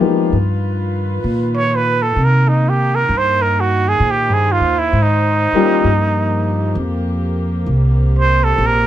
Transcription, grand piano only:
Already playing: G#3 C4 D4 G#4
0.00 F3 A#3 B3 D#4 G4
5.54 G3 A#3 C#4 F4 G4

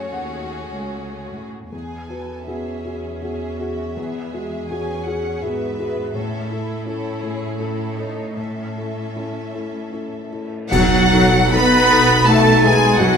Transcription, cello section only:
0.13 D#2
0.73 C#2
1.33 A2
1.73 E2
5.44 G#2
6.16 A2
10.72 F#3
11.53 B3
12.28 A3
12.64 G#3
13.02 F#3

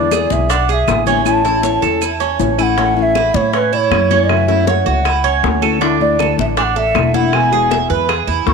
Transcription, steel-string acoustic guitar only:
Already playing: G#3 B3 E4
0.11 D3 G#3 B3 E4
0.49 muted steel-string acoustic guitar stroke
0.87 D3 G#3 B3 E4
1.06 D3 G#3 B3 E4
1.25 E3 A3 C#4 E4
1.44 A3 C#4 E4
1.64 E3 A3 C#4 E4
2.02 muted steel-string acoustic guitar stroke
2.39 E3 A3 C#4 E4
2.58 A3 C#4 E4
2.77 E3 A3 C#4 E4
2.96 A3 C#4 E4
3.16 E3 A3 C#4 E4
3.54 muted steel-string acoustic guitar stroke
3.91 E3 A3 C#4 E4
4.10 A3 C#4 E4
4.29 C#3 E3 A3 C#4 F#4
4.48 E3 A3 C#4 F#4
4.67 E3 A3 C#4
5.05 muted steel-string acoustic guitar stroke
5.43 E3 A3 C#4 F#4
5.62 E3 A3 C#4 F#4
5.81 D3 A3 D4 E4
6.00 A3 D4 E4
6.19 D3 E4
6.57 muted steel-string acoustic guitar stroke
6.96 D3 A3 D4 E4
7.14 A3 D4 E4
7.33 B2 E3 G#3 B3 F#4
7.52 E3 G#3 B3 F#4
7.71 E3 G#3 B3 F#4
8.09 muted steel-string acoustic guitar stroke
8.47 E3 G#3 B3 F#4

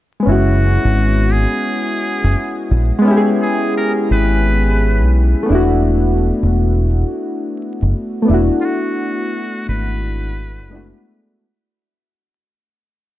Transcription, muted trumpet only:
0.28 F#4
1.33 G#4
3.42 G#4
3.77 A#4
4.12 B4
8.61 F4
8.65 F#4
9.70 B4

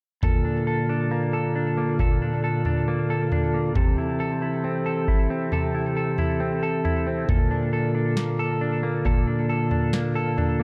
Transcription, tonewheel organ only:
0.23 D3 A#3 F4 A4
2.00 A4
3.76 E3 C4 G4 A4
7.30 D3 A#3 F4

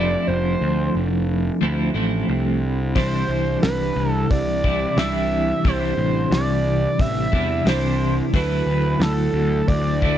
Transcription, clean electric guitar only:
Already playing: F3 A3 C4 E4
1.61 F3 A3 C4 E4
1.94 F3 A3 C4 E4
2.95 C3 E3 G3 D4 E4
4.64 C3 E3 G3 D4 E4
4.97 C3 E3 G3 D4 E4
5.65 C3 E3 G3 D4 E4
7.32 C3 E3 G3 D4 E4
7.65 C3 E3 G3 D4 E4
8.34 D3 F#3 A3 E4
10.02 D3 F#3 A3 E4

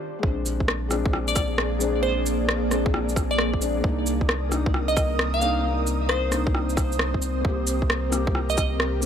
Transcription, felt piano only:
Already playing: D4 F4 G4
0.19 G#3 C4
0.27 D4
0.89 G#3 C4 D4
1.79 G#3 C4 D4
2.00 G#3 C4
2.08 D4
2.69 G#3 C4 D4
3.59 G#3 C4 D4
3.80 A#3 D4
3.88 D#4
4.49 A#3 D4
4.53 D#4
5.39 A#3 D4
5.44 D#4
5.60 A#3 D4
5.68 D#4
6.30 A#3 D4 D#4
7.41 A#3 C4
7.48 G4
8.10 A#3 C4 G4
9.00 A#3 C4

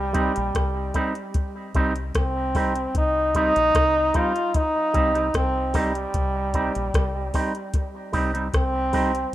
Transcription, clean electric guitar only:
0.13 G3 C4 D#4
0.94 G3 C4 D#4
1.75 G3 C4 D#4
2.55 G3 C4 D#4
3.35 G3 C4 D#4
4.14 G3 C4 D#4
4.94 G3 C4 D#4
5.15 G3 C4 D#4
5.74 G3 C4 D#4
6.54 G3 C4 D#4
7.34 G3 C4 D#4
8.13 G3 C4 D#4
8.34 G3 C4 D#4
8.93 G3 C4 D#4

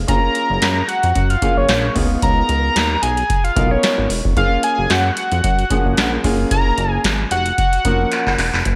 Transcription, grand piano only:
0.07 A#3 C#4 F4 G#4
1.42 A#3 C#4 F4 G#4
1.95 B3 D#4 F4 G#4
3.56 B3 D#4 F4 A#4
4.36 A#3 C#4 F4 G#4
5.70 F3 A#3 C#4 G#4
6.24 A#3 C#4 F4 G#4
7.84 F3 A#3 C#4 A#4

